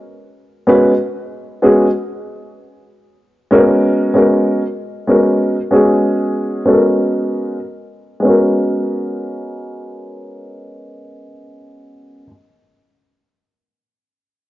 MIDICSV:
0, 0, Header, 1, 2, 480
1, 0, Start_track
1, 0, Key_signature, 5, "minor"
1, 0, Tempo, 631579
1, 512, Time_signature, 4, 2, 24, 8
1, 11014, End_track
2, 0, Start_track
2, 0, Title_t, "Upright piano"
2, 0, Program_c, 0, 0
2, 508, Note_on_c, 0, 56, 73
2, 509, Note_on_c, 0, 59, 72
2, 516, Note_on_c, 0, 61, 67
2, 518, Note_on_c, 0, 66, 70
2, 523, Note_on_c, 0, 71, 88
2, 690, Note_off_c, 0, 56, 0
2, 691, Note_off_c, 0, 59, 0
2, 694, Note_off_c, 0, 61, 0
2, 695, Note_off_c, 0, 66, 0
2, 698, Note_off_c, 0, 71, 0
2, 1233, Note_on_c, 0, 56, 66
2, 1235, Note_on_c, 0, 59, 67
2, 1240, Note_on_c, 0, 61, 58
2, 1242, Note_on_c, 0, 66, 68
2, 1245, Note_on_c, 0, 68, 75
2, 1413, Note_off_c, 0, 56, 0
2, 1414, Note_off_c, 0, 59, 0
2, 1416, Note_off_c, 0, 61, 0
2, 1417, Note_off_c, 0, 66, 0
2, 1419, Note_off_c, 0, 68, 0
2, 2666, Note_on_c, 0, 56, 82
2, 2673, Note_on_c, 0, 58, 59
2, 2674, Note_on_c, 0, 61, 78
2, 2682, Note_on_c, 0, 66, 69
2, 2682, Note_on_c, 0, 70, 84
2, 2724, Note_on_c, 0, 59, 72
2, 2731, Note_off_c, 0, 58, 0
2, 3133, Note_off_c, 0, 56, 0
2, 3139, Note_off_c, 0, 59, 0
2, 3141, Note_off_c, 0, 61, 0
2, 3145, Note_on_c, 0, 56, 66
2, 3147, Note_off_c, 0, 66, 0
2, 3151, Note_on_c, 0, 59, 59
2, 3152, Note_off_c, 0, 70, 0
2, 3153, Note_on_c, 0, 61, 54
2, 3158, Note_on_c, 0, 66, 58
2, 3163, Note_on_c, 0, 70, 71
2, 3501, Note_off_c, 0, 56, 0
2, 3504, Note_off_c, 0, 59, 0
2, 3505, Note_off_c, 0, 61, 0
2, 3508, Note_off_c, 0, 66, 0
2, 3510, Note_off_c, 0, 70, 0
2, 3857, Note_on_c, 0, 56, 66
2, 3864, Note_on_c, 0, 59, 56
2, 3865, Note_on_c, 0, 61, 56
2, 3869, Note_on_c, 0, 66, 55
2, 3875, Note_on_c, 0, 70, 66
2, 4217, Note_off_c, 0, 56, 0
2, 4220, Note_off_c, 0, 59, 0
2, 4221, Note_off_c, 0, 61, 0
2, 4223, Note_off_c, 0, 66, 0
2, 4226, Note_off_c, 0, 70, 0
2, 4339, Note_on_c, 0, 56, 73
2, 4339, Note_on_c, 0, 59, 56
2, 4347, Note_on_c, 0, 61, 63
2, 4350, Note_on_c, 0, 66, 63
2, 4357, Note_on_c, 0, 68, 72
2, 5026, Note_off_c, 0, 56, 0
2, 5026, Note_off_c, 0, 59, 0
2, 5030, Note_off_c, 0, 61, 0
2, 5031, Note_off_c, 0, 66, 0
2, 5035, Note_off_c, 0, 68, 0
2, 5058, Note_on_c, 0, 56, 60
2, 5059, Note_on_c, 0, 59, 61
2, 5065, Note_on_c, 0, 61, 56
2, 5068, Note_on_c, 0, 66, 62
2, 5076, Note_on_c, 0, 69, 63
2, 5123, Note_on_c, 0, 70, 67
2, 5132, Note_off_c, 0, 69, 0
2, 5746, Note_off_c, 0, 56, 0
2, 5746, Note_off_c, 0, 59, 0
2, 5749, Note_off_c, 0, 61, 0
2, 5750, Note_off_c, 0, 66, 0
2, 5778, Note_off_c, 0, 70, 0
2, 6230, Note_on_c, 0, 56, 71
2, 6247, Note_on_c, 0, 59, 60
2, 6266, Note_on_c, 0, 61, 62
2, 6285, Note_on_c, 0, 66, 60
2, 6298, Note_on_c, 0, 70, 73
2, 9281, Note_off_c, 0, 56, 0
2, 9289, Note_off_c, 0, 59, 0
2, 9299, Note_off_c, 0, 61, 0
2, 9308, Note_off_c, 0, 66, 0
2, 9315, Note_off_c, 0, 70, 0
2, 11014, End_track
0, 0, End_of_file